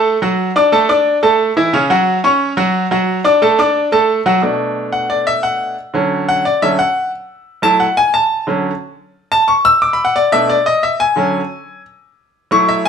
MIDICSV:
0, 0, Header, 1, 2, 480
1, 0, Start_track
1, 0, Tempo, 336889
1, 556, Time_signature, 4, 2, 24, 8
1, 18360, End_track
2, 0, Start_track
2, 0, Title_t, "Grand piano"
2, 0, Program_c, 0, 0
2, 0, Note_on_c, 0, 57, 79
2, 0, Note_on_c, 0, 69, 78
2, 0, Note_on_c, 0, 81, 83
2, 232, Note_off_c, 0, 57, 0
2, 234, Note_off_c, 0, 69, 0
2, 236, Note_off_c, 0, 81, 0
2, 312, Note_on_c, 0, 54, 72
2, 316, Note_on_c, 0, 66, 69
2, 322, Note_on_c, 0, 78, 76
2, 707, Note_off_c, 0, 54, 0
2, 709, Note_off_c, 0, 66, 0
2, 712, Note_off_c, 0, 78, 0
2, 794, Note_on_c, 0, 62, 82
2, 798, Note_on_c, 0, 74, 87
2, 804, Note_on_c, 0, 86, 80
2, 991, Note_off_c, 0, 62, 0
2, 993, Note_off_c, 0, 74, 0
2, 997, Note_off_c, 0, 86, 0
2, 1029, Note_on_c, 0, 57, 82
2, 1033, Note_on_c, 0, 69, 80
2, 1039, Note_on_c, 0, 81, 83
2, 1227, Note_off_c, 0, 57, 0
2, 1230, Note_off_c, 0, 69, 0
2, 1233, Note_off_c, 0, 81, 0
2, 1268, Note_on_c, 0, 62, 77
2, 1270, Note_on_c, 0, 74, 78
2, 1275, Note_on_c, 0, 86, 85
2, 1663, Note_off_c, 0, 62, 0
2, 1664, Note_off_c, 0, 74, 0
2, 1667, Note_off_c, 0, 86, 0
2, 1747, Note_on_c, 0, 69, 77
2, 1748, Note_on_c, 0, 57, 77
2, 1754, Note_on_c, 0, 81, 80
2, 2142, Note_off_c, 0, 69, 0
2, 2143, Note_off_c, 0, 57, 0
2, 2146, Note_off_c, 0, 81, 0
2, 2231, Note_on_c, 0, 52, 72
2, 2234, Note_on_c, 0, 64, 82
2, 2238, Note_on_c, 0, 76, 75
2, 2428, Note_off_c, 0, 52, 0
2, 2430, Note_off_c, 0, 64, 0
2, 2432, Note_off_c, 0, 76, 0
2, 2468, Note_on_c, 0, 49, 83
2, 2472, Note_on_c, 0, 61, 84
2, 2475, Note_on_c, 0, 73, 81
2, 2666, Note_off_c, 0, 49, 0
2, 2668, Note_off_c, 0, 61, 0
2, 2670, Note_off_c, 0, 73, 0
2, 2707, Note_on_c, 0, 54, 81
2, 2710, Note_on_c, 0, 66, 81
2, 2714, Note_on_c, 0, 78, 83
2, 3101, Note_off_c, 0, 54, 0
2, 3103, Note_off_c, 0, 66, 0
2, 3105, Note_off_c, 0, 78, 0
2, 3190, Note_on_c, 0, 61, 81
2, 3193, Note_on_c, 0, 73, 82
2, 3201, Note_on_c, 0, 85, 83
2, 3583, Note_off_c, 0, 61, 0
2, 3585, Note_off_c, 0, 73, 0
2, 3589, Note_off_c, 0, 85, 0
2, 3662, Note_on_c, 0, 54, 80
2, 3667, Note_on_c, 0, 66, 82
2, 3669, Note_on_c, 0, 78, 81
2, 4058, Note_off_c, 0, 54, 0
2, 4061, Note_off_c, 0, 66, 0
2, 4062, Note_off_c, 0, 78, 0
2, 4148, Note_on_c, 0, 54, 78
2, 4154, Note_on_c, 0, 66, 75
2, 4159, Note_on_c, 0, 78, 77
2, 4541, Note_off_c, 0, 54, 0
2, 4545, Note_off_c, 0, 66, 0
2, 4547, Note_off_c, 0, 78, 0
2, 4622, Note_on_c, 0, 62, 83
2, 4626, Note_on_c, 0, 74, 83
2, 4632, Note_on_c, 0, 86, 80
2, 4821, Note_off_c, 0, 62, 0
2, 4823, Note_off_c, 0, 74, 0
2, 4827, Note_off_c, 0, 86, 0
2, 4870, Note_on_c, 0, 57, 78
2, 4876, Note_on_c, 0, 69, 76
2, 4879, Note_on_c, 0, 81, 78
2, 5065, Note_off_c, 0, 57, 0
2, 5069, Note_off_c, 0, 69, 0
2, 5071, Note_off_c, 0, 81, 0
2, 5110, Note_on_c, 0, 62, 82
2, 5115, Note_on_c, 0, 74, 77
2, 5122, Note_on_c, 0, 86, 83
2, 5502, Note_off_c, 0, 62, 0
2, 5505, Note_off_c, 0, 74, 0
2, 5509, Note_off_c, 0, 86, 0
2, 5585, Note_on_c, 0, 57, 72
2, 5590, Note_on_c, 0, 69, 72
2, 5592, Note_on_c, 0, 81, 80
2, 5979, Note_off_c, 0, 57, 0
2, 5982, Note_off_c, 0, 69, 0
2, 5983, Note_off_c, 0, 81, 0
2, 6066, Note_on_c, 0, 54, 76
2, 6069, Note_on_c, 0, 66, 76
2, 6072, Note_on_c, 0, 78, 77
2, 6263, Note_off_c, 0, 54, 0
2, 6264, Note_off_c, 0, 66, 0
2, 6266, Note_off_c, 0, 78, 0
2, 6296, Note_on_c, 0, 47, 52
2, 6303, Note_on_c, 0, 57, 48
2, 6312, Note_on_c, 0, 62, 64
2, 7017, Note_on_c, 0, 78, 77
2, 7254, Note_off_c, 0, 78, 0
2, 7262, Note_on_c, 0, 74, 81
2, 7497, Note_off_c, 0, 74, 0
2, 7505, Note_on_c, 0, 76, 96
2, 7738, Note_on_c, 0, 78, 84
2, 7739, Note_off_c, 0, 76, 0
2, 8165, Note_off_c, 0, 47, 0
2, 8168, Note_off_c, 0, 57, 0
2, 8173, Note_off_c, 0, 62, 0
2, 8188, Note_off_c, 0, 78, 0
2, 8458, Note_on_c, 0, 50, 64
2, 8469, Note_on_c, 0, 54, 54
2, 8476, Note_on_c, 0, 61, 68
2, 8955, Note_on_c, 0, 78, 91
2, 9147, Note_off_c, 0, 50, 0
2, 9153, Note_off_c, 0, 54, 0
2, 9156, Note_off_c, 0, 61, 0
2, 9185, Note_off_c, 0, 78, 0
2, 9194, Note_on_c, 0, 74, 82
2, 9424, Note_off_c, 0, 74, 0
2, 9432, Note_on_c, 0, 50, 53
2, 9437, Note_on_c, 0, 76, 93
2, 9438, Note_on_c, 0, 54, 46
2, 9441, Note_on_c, 0, 61, 54
2, 9646, Note_off_c, 0, 50, 0
2, 9650, Note_off_c, 0, 54, 0
2, 9651, Note_off_c, 0, 61, 0
2, 9666, Note_off_c, 0, 76, 0
2, 9671, Note_on_c, 0, 78, 90
2, 10117, Note_off_c, 0, 78, 0
2, 10861, Note_on_c, 0, 54, 56
2, 10870, Note_on_c, 0, 57, 56
2, 10871, Note_on_c, 0, 81, 106
2, 10879, Note_on_c, 0, 64, 60
2, 11104, Note_off_c, 0, 81, 0
2, 11111, Note_on_c, 0, 78, 82
2, 11185, Note_off_c, 0, 54, 0
2, 11190, Note_off_c, 0, 57, 0
2, 11194, Note_off_c, 0, 64, 0
2, 11344, Note_off_c, 0, 78, 0
2, 11359, Note_on_c, 0, 80, 96
2, 11588, Note_off_c, 0, 80, 0
2, 11595, Note_on_c, 0, 81, 93
2, 12040, Note_off_c, 0, 81, 0
2, 12066, Note_on_c, 0, 50, 59
2, 12077, Note_on_c, 0, 54, 51
2, 12086, Note_on_c, 0, 61, 56
2, 12389, Note_off_c, 0, 50, 0
2, 12394, Note_off_c, 0, 54, 0
2, 12399, Note_off_c, 0, 61, 0
2, 13274, Note_on_c, 0, 81, 108
2, 13505, Note_on_c, 0, 85, 89
2, 13507, Note_off_c, 0, 81, 0
2, 13742, Note_off_c, 0, 85, 0
2, 13748, Note_on_c, 0, 88, 121
2, 13984, Note_off_c, 0, 88, 0
2, 13989, Note_on_c, 0, 86, 87
2, 14147, Note_off_c, 0, 86, 0
2, 14152, Note_on_c, 0, 83, 81
2, 14309, Note_off_c, 0, 83, 0
2, 14313, Note_on_c, 0, 78, 88
2, 14470, Note_off_c, 0, 78, 0
2, 14471, Note_on_c, 0, 74, 91
2, 14705, Note_on_c, 0, 47, 56
2, 14706, Note_off_c, 0, 74, 0
2, 14709, Note_on_c, 0, 76, 103
2, 14711, Note_on_c, 0, 57, 51
2, 14720, Note_on_c, 0, 62, 64
2, 14945, Note_off_c, 0, 76, 0
2, 14953, Note_on_c, 0, 74, 92
2, 15030, Note_off_c, 0, 47, 0
2, 15033, Note_off_c, 0, 57, 0
2, 15037, Note_off_c, 0, 62, 0
2, 15188, Note_off_c, 0, 74, 0
2, 15190, Note_on_c, 0, 75, 88
2, 15426, Note_off_c, 0, 75, 0
2, 15431, Note_on_c, 0, 76, 88
2, 15667, Note_off_c, 0, 76, 0
2, 15672, Note_on_c, 0, 80, 96
2, 15898, Note_on_c, 0, 50, 55
2, 15910, Note_on_c, 0, 54, 52
2, 15918, Note_on_c, 0, 61, 65
2, 16226, Note_off_c, 0, 50, 0
2, 16232, Note_off_c, 0, 54, 0
2, 16237, Note_off_c, 0, 61, 0
2, 16818, Note_off_c, 0, 80, 0
2, 17824, Note_on_c, 0, 54, 58
2, 17833, Note_on_c, 0, 57, 51
2, 17836, Note_on_c, 0, 85, 99
2, 17841, Note_on_c, 0, 64, 64
2, 18070, Note_off_c, 0, 85, 0
2, 18074, Note_on_c, 0, 76, 86
2, 18308, Note_off_c, 0, 76, 0
2, 18315, Note_on_c, 0, 80, 106
2, 18360, Note_off_c, 0, 54, 0
2, 18360, Note_off_c, 0, 57, 0
2, 18360, Note_off_c, 0, 64, 0
2, 18360, Note_off_c, 0, 80, 0
2, 18360, End_track
0, 0, End_of_file